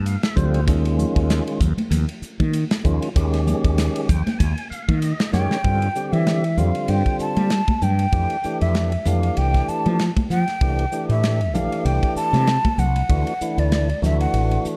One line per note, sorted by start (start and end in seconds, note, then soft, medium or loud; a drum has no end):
0.00 0.15 G2 medium
0.06 0.22 F5 medium
0.06 hi-hat pedal medium
0.06 ride medium
0.23 0.36 E5 medium
0.23 snare loud
0.23 ride medium
0.35 0.67 D2 medium
0.35 0.60 D3 medium
0.35 0.61 G3 medium
0.35 0.61 C4 medium
0.35 0.61 F4 medium
0.35 0.65 C5 medium
0.35 kick medium
0.35 hi-hat pedal medium
0.35 low conga medium
0.54 ride medium
0.66 1.04 D#2 medium
0.66 1.60 D#3 medium
0.66 1.61 G#3 medium
0.66 1.60 C#4 medium
0.66 1.61 F4 medium
0.66 kick loud
0.66 hi-hat pedal medium
0.66 ride medium
0.85 ride medium
0.99 hi-hat pedal medium
0.99 high conga medium
0.99 low conga medium
1.16 1.39 D#2 medium
1.16 kick medium
1.16 ride medium
1.30 snare loud
1.30 hi-hat pedal medium
1.30 ride medium
1.47 ride medium
1.60 1.74 D#2 medium
1.60 kick medium
1.60 hi-hat pedal medium
1.60 low conga medium
1.77 muted fretless electric bass stroke soft
1.77 ride medium
1.77 high conga medium
1.91 2.04 D#2 medium
1.91 hi-hat pedal medium
1.91 ride medium
1.91 low conga medium
2.09 ride medium
2.22 muted fretless electric bass stroke soft
2.22 hi-hat pedal medium
2.40 2.63 D#3 medium
2.40 kick medium
2.40 ride medium
2.40 high conga medium
2.53 hi-hat pedal medium
2.53 ride medium
2.71 snare loud
2.71 ride medium
2.84 2.98 D#2 medium
2.84 3.09 D#3 medium
2.84 3.09 G#3 medium
2.84 3.09 C#4 medium
2.84 3.09 F4 medium
2.84 kick medium
2.84 hi-hat pedal medium
2.84 low conga medium
3.02 ride medium
3.15 3.52 D#2 medium
3.15 4.09 D#3 medium
3.15 4.09 G#3 medium
3.15 4.09 C#4 medium
3.15 4.09 G4 medium
3.15 kick loud
3.15 hi-hat pedal medium
3.15 ride medium
3.33 snare soft
3.33 ride medium
3.47 hi-hat pedal medium
3.47 high conga medium
3.47 low conga medium
3.64 3.88 D#2 medium
3.64 kick medium
3.64 ride medium
3.78 snare medium
3.78 hi-hat pedal medium
3.78 ride medium
3.96 ride medium
4.09 4.22 D#2 medium
4.09 4.38 G5 medium
4.09 kick medium
4.09 hi-hat pedal medium
4.09 low conga medium
4.27 muted fretless electric bass stroke soft
4.27 snare soft
4.27 ride medium
4.27 high conga medium
4.39 4.53 D#2 medium
4.39 4.68 G#5 medium
4.39 kick medium
4.39 hi-hat pedal medium
4.39 ride medium
4.39 high conga medium
4.58 ride medium
4.70 4.99 F5 medium
4.70 muted fretless electric bass stroke soft
4.70 hi-hat pedal medium
4.88 5.12 D#3 medium
4.88 kick medium
4.88 ride medium
4.88 high conga medium
5.02 5.31 D#5 medium
5.02 hi-hat pedal medium
5.02 ride medium
5.20 snare loud
5.20 ride medium
5.32 5.46 F#2 medium
5.32 5.57 D#3 medium
5.32 5.57 G#3 medium
5.32 5.58 C#4 medium
5.32 5.58 G4 medium
5.32 5.62 C#5 medium
5.32 6.14 G5 medium
5.32 snare medium
5.32 hi-hat pedal medium
5.32 high conga medium
5.32 low conga medium
5.51 snare medium
5.64 5.87 G2 medium
5.64 5.88 D3 medium
5.64 5.88 G3 medium
5.64 5.89 C4 medium
5.64 5.89 F4 medium
5.64 kick medium
5.64 ride medium
5.82 ride medium
5.95 6.44 D3 medium
5.95 6.44 G3 medium
5.95 6.44 C4 soft
5.95 6.44 G4 medium
5.95 hi-hat pedal medium
6.12 6.59 E3 medium
6.12 6.59 E5 medium
6.12 ride medium
6.27 snare medium
6.27 ride medium
6.44 ride medium
6.57 6.70 F2 medium
6.57 7.50 D3 medium
6.57 7.51 G3 medium
6.57 7.51 C4 medium
6.57 7.51 F4 medium
6.57 6.91 F5 medium
6.57 hi-hat pedal medium
6.57 low conga medium
6.75 ride medium
6.88 7.02 G2 medium
6.88 7.20 G5 medium
6.88 ride medium
7.06 kick medium
7.06 ride soft
7.19 7.84 A5 medium
7.19 muted fretless electric bass stroke soft
7.19 hi-hat pedal medium
7.36 7.60 G3 medium
7.36 ride medium
7.36 high conga medium
7.50 snare medium
7.50 ride medium
7.68 kick medium
7.68 ride medium
7.68 high conga medium
7.81 8.05 G2 medium
7.81 8.61 G5 medium
7.81 hi-hat pedal medium
7.81 low conga medium
7.99 ride medium
8.12 8.26 F2 medium
8.12 8.37 E3 medium
8.12 8.37 A3 medium
8.12 8.37 D4 medium
8.12 8.37 G4 medium
8.12 kick loud
8.12 ride medium
8.30 ride medium
8.44 8.92 E3 medium
8.44 8.93 A3 medium
8.44 8.93 D4 medium
8.44 8.93 G4 medium
8.44 muted fretless electric bass stroke soft
8.44 hi-hat pedal medium
8.61 8.95 F2 medium
8.61 9.09 E5 medium
8.61 ride medium
8.75 snare medium
8.75 ride medium
8.92 ride medium
9.05 9.29 F2 medium
9.05 9.99 E3 medium
9.05 9.99 A3 medium
9.05 10.00 D4 medium
9.05 10.00 G4 medium
9.05 9.39 F5 medium
9.05 hi-hat pedal medium
9.05 low conga medium
9.23 ride soft
9.37 9.61 C2 medium
9.37 9.70 G5 medium
9.37 ride medium
9.54 kick medium
9.54 snare soft
9.54 ride medium
9.68 10.04 A5 medium
9.68 muted fretless electric bass stroke soft
9.68 hi-hat pedal medium
9.86 10.09 F3 medium
9.86 ride soft
9.86 high conga medium
9.99 snare medium
9.99 ride medium
10.16 kick medium
10.16 ride medium
10.16 high conga medium
10.30 10.43 F3 medium
10.30 11.06 G5 medium
10.30 hi-hat pedal medium
10.30 low conga medium
10.48 snare soft
10.48 ride medium
10.61 10.84 C2 medium
10.61 10.85 E3 medium
10.61 10.86 A3 soft
10.61 10.86 D4 medium
10.61 10.86 G4 medium
10.61 kick loud
10.61 ride medium
10.79 ride medium
10.92 11.40 E3 medium
10.92 11.40 A3 medium
10.92 11.41 D4 medium
10.92 11.41 G4 medium
10.92 hi-hat pedal medium
11.09 11.54 A2 medium
11.09 11.56 E5 medium
11.09 ride medium
11.23 snare medium
11.23 ride medium
11.41 ride medium
11.54 11.67 A#1 medium
11.54 12.47 E3 medium
11.54 12.47 A3 medium
11.54 12.47 D4 medium
11.54 12.47 G4 medium
11.54 11.87 F5 medium
11.54 hi-hat pedal medium
11.54 low conga medium
11.72 ride medium
11.85 11.98 C2 medium
11.85 12.16 G5 medium
11.85 ride medium
12.03 kick medium
12.03 ride soft
12.16 12.80 A5 loud
12.16 muted fretless electric bass stroke soft
12.16 hi-hat pedal medium
12.33 12.57 C3 medium
12.33 snare soft
12.33 ride medium
12.33 high conga medium
12.47 snare medium
12.47 ride medium
12.65 kick medium
12.65 ride medium
12.65 high conga medium
12.78 13.01 C2 medium
12.78 13.61 F#5 medium
12.78 hi-hat pedal medium
12.78 low conga medium
12.96 ride medium
13.09 13.23 D2 medium
13.09 13.33 E3 medium
13.09 13.34 A3 medium
13.09 13.34 D4 medium
13.09 13.34 F#4 medium
13.09 kick medium
13.09 ride medium
13.27 ride medium
13.41 13.89 E3 medium
13.41 13.89 A3 medium
13.41 13.90 D4 medium
13.41 13.89 E4 medium
13.41 muted fretless electric bass stroke soft
13.41 hi-hat pedal medium
13.58 13.91 D2 medium
13.58 14.03 D5 medium
13.58 ride medium
13.72 snare loud
13.72 ride medium
13.89 ride medium
14.02 14.25 D2 medium
14.02 14.77 E3 medium
14.02 14.77 A3 medium
14.02 14.77 D4 medium
14.02 14.77 F#4 medium
14.02 14.19 E5 medium
14.02 snare soft
14.02 hi-hat pedal medium
14.02 low conga medium
14.20 14.66 F#5 medium
14.20 ride medium
14.34 14.57 A1 medium
14.34 ride medium
14.51 ride medium
14.65 muted fretless electric bass stroke soft
14.65 hi-hat pedal medium